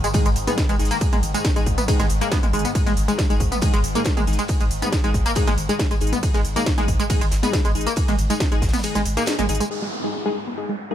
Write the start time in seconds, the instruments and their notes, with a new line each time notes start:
Already playing: synth drone G#2 D#3
0.04 synth arpeggio sound G#3, closed hi-hat, tambourine
0.14 synth stab G#3 D#4 G#4, kick, closed hi-hat, ride, tambourine
0.26 sub bass G#1, synth arpeggio sound G#3, closed hi-hat, tambourine
0.36 sub bass G#1, closed hi-hat, open hi-hat
0.47 synth stab G#3 D#4 G#4, synth arpeggio sound B3, closed hi-hat, mid tom, tambourine
0.58 kick, snare, closed hi-hat, ride, tambourine
0.69 sub bass G#1, synth arpeggio sound G#3, closed hi-hat, tambourine
0.79 sub bass G#1, synth stab G#3 D#4 G#4, open hi-hat
0.85 closed hi-hat
0.91 synth arpeggio sound A#3, closed hi-hat, tambourine
1.01 synth stab G#3 D#4 G#4, kick, closed hi-hat, ride, tambourine
1.13 sub bass G#1, synth arpeggio sound G#3, closed hi-hat, mid tom, tambourine
1.23 sub bass G#1, closed hi-hat, open hi-hat
1.34 synth stab G#3 D#4 G#4, synth arpeggio sound G#3, closed hi-hat, tambourine
1.44 kick, snare, closed hi-hat, ride, tambourine
1.56 sub bass G#1, synth stab G#3 D#4 G#4, synth arpeggio sound G#3, closed hi-hat, tambourine
1.66 sub bass G#1, kick, closed hi-hat, open hi-hat
1.78 synth arpeggio sound B3, closed hi-hat, mid tom, tambourine
1.88 synth stab G#3 D#4 G#4, kick, closed hi-hat, ride, tambourine
2.00 sub bass G#1, synth arpeggio sound G#3, snare, closed hi-hat, tambourine
2.09 sub bass G#1, closed hi-hat, open hi-hat
2.21 synth stab G#3 D#4 G#4, synth arpeggio sound A#3, closed hi-hat, tambourine
2.31 synth arpeggio sound B3, kick, snare, closed hi-hat, ride, tambourine
2.43 sub bass G#1, synth arpeggio sound G#3, closed hi-hat, mid tom, tambourine
2.53 sub bass G#1, synth arpeggio sound G#3, synth stab G#3 D#4 G#4, closed hi-hat, open hi-hat
2.59 closed hi-hat
2.65 synth arpeggio sound B3, closed hi-hat, tambourine
2.75 synth stab G#3 D#4 G#4, kick, closed hi-hat, ride, tambourine
2.86 sub bass G#1, synth arpeggio sound G#3, snare, closed hi-hat, mid tom, tambourine
2.97 sub bass G#1, closed hi-hat, open hi-hat
3.08 synth arpeggio sound G#3, synth stab G#3 D#4 G#4, closed hi-hat, tambourine
3.18 kick, snare, closed hi-hat, ride, tambourine
3.30 sub bass G#1, synth stab G#3 D#4 G#4, synth arpeggio sound G#3, closed hi-hat, tambourine
3.40 sub bass G#1, kick, closed hi-hat, open hi-hat
3.52 synth arpeggio sound B3, closed hi-hat, mid tom, tambourine
3.62 synth stab G#3 D#4 G#4, kick, closed hi-hat, ride, tambourine
3.73 sub bass G#1, synth arpeggio sound G#3, closed hi-hat, tambourine
3.84 sub bass G#1, closed hi-hat, open hi-hat
3.95 synth stab G#3 D#4 G#4, synth arpeggio sound A#3, closed hi-hat, tambourine
4.05 kick, snare, closed hi-hat, ride, tambourine
4.17 sub bass G#1, synth arpeggio sound G#3, closed hi-hat, mid tom, tambourine
4.27 sub bass G#1, synth stab G#3 D#4 G#4, open hi-hat
4.33 closed hi-hat
4.39 synth arpeggio sound G#3, closed hi-hat, tambourine
4.48 synth stab G#3 D#4 G#4, kick, closed hi-hat, ride, tambourine
4.60 sub bass G#1, synth arpeggio sound G#3, closed hi-hat, tambourine
4.71 sub bass G#1, closed hi-hat, open hi-hat
4.82 synth stab G#3 D#4 G#4, synth arpeggio sound B3, closed hi-hat, mid tom, tambourine
4.92 kick, snare, closed hi-hat, ride, tambourine
5.04 sub bass G#1, synth stab G#3 D#4 G#4, synth arpeggio sound G#3, closed hi-hat, tambourine
5.14 sub bass G#1, kick, closed hi-hat, open hi-hat
5.26 synth arpeggio sound A#3, closed hi-hat, tambourine
5.35 synth stab G#3 D#4 G#4, kick, closed hi-hat, ride, tambourine
5.47 sub bass G#1, synth arpeggio sound G#3, snare, closed hi-hat, mid tom, tambourine
5.58 sub bass G#1, closed hi-hat, open hi-hat
5.69 synth stab G#3 D#4 G#4, synth arpeggio sound G#3, closed hi-hat, tambourine
5.79 kick, snare, closed hi-hat, ride, tambourine
5.91 sub bass G#1, synth arpeggio sound G#3, closed hi-hat, tambourine
6.01 sub bass G#1, synth stab G#3 D#4 G#4, closed hi-hat, open hi-hat
6.07 closed hi-hat
6.13 synth arpeggio sound B3, closed hi-hat, mid tom, tambourine
6.23 synth stab G#3 D#4 G#4, kick, closed hi-hat, ride, tambourine
6.34 sub bass G#1, synth arpeggio sound G#3, snare, closed hi-hat, tambourine
6.45 sub bass G#1, closed hi-hat, open hi-hat
6.56 synth stab G#3 D#4 G#4, synth arpeggio sound A#3, closed hi-hat, tambourine
6.66 kick, snare, closed hi-hat, ride
6.78 sub bass G#1, synth arpeggio sound G#3, synth stab G#3 D#4 G#4, closed hi-hat, mid tom, tambourine
6.88 sub bass G#1, kick, closed hi-hat, open hi-hat
7.00 synth arpeggio sound G#3, closed hi-hat, tambourine
7.10 synth stab G#3 D#4 G#4, kick, closed hi-hat, ride, tambourine
7.21 sub bass G#1, synth arpeggio sound G#3, closed hi-hat, tambourine
7.31 sub bass G#1, snare, closed hi-hat, open hi-hat
7.43 synth stab G#3 D#4 G#4, synth arpeggio sound B3, snare, closed hi-hat, mid tom, tambourine
7.53 kick, snare, closed hi-hat, ride, tambourine
7.65 sub bass G#1, synth arpeggio sound G#3, closed hi-hat, tambourine
7.75 sub bass G#1, synth stab G#3 D#4 G#4, closed hi-hat, open hi-hat
7.81 closed hi-hat
7.86 synth arpeggio sound A#3, snare, closed hi-hat, tambourine
7.96 synth stab G#3 D#4 G#4, kick, closed hi-hat, ride, tambourine
8.08 sub bass G#1, synth arpeggio sound G#3, closed hi-hat, mid tom, tambourine
8.18 sub bass G#1, closed hi-hat, open hi-hat
8.30 synth arpeggio sound G#3, synth stab G#3 D#4 G#4, closed hi-hat, tambourine
8.40 kick, snare, closed hi-hat, ride, tambourine
8.52 sub bass G#1, synth arpeggio sound G#3, synth stab G#3 D#4 G#4, closed hi-hat, tambourine
8.62 sub bass G#1, kick, snare, closed hi-hat, open hi-hat
8.69 snare, closed hi-hat
8.73 synth arpeggio sound B3, snare, closed hi-hat, mid tom, tambourine
8.79 snare, closed hi-hat
8.83 synth stab G#3 D#4 G#4, closed hi-hat, ride, tambourine
8.95 sub bass G#1, synth arpeggio sound G#3, snare, closed hi-hat, tambourine
9.05 sub bass G#1, closed hi-hat, open hi-hat
9.17 synth stab G#3 D#4 G#4, synth arpeggio sound A#3, closed hi-hat, tambourine
9.26 snare, closed hi-hat, ride, tambourine
9.39 sub bass G#1, synth arpeggio sound G#3, closed hi-hat, mid tom, tambourine
9.49 sub bass G#1, synth stab G#3 D#4 G#4, closed hi-hat, open hi-hat
9.55 closed hi-hat
9.60 synth arpeggio sound G#3, closed hi-hat, tambourine
9.71 synth stab G#3 D#4 G#4, closed hi-hat, downlifter
9.82 synth arpeggio sound G#3, closed hi-hat
9.92 closed hi-hat
10.04 synth stab G#3 D#4 G#4, synth arpeggio sound G#3, closed hi-hat
10.14 closed hi-hat
10.26 synth stab G#3 D#4 G#4, synth arpeggio sound G#3, closed hi-hat
10.47 synth arpeggio sound B3, closed hi-hat
10.58 synth stab G#3 D#4 G#4, closed hi-hat
10.69 synth arpeggio sound G#3, closed hi-hat
10.91 synth stab G#3 D#4 G#4, synth arpeggio sound A#3, closed hi-hat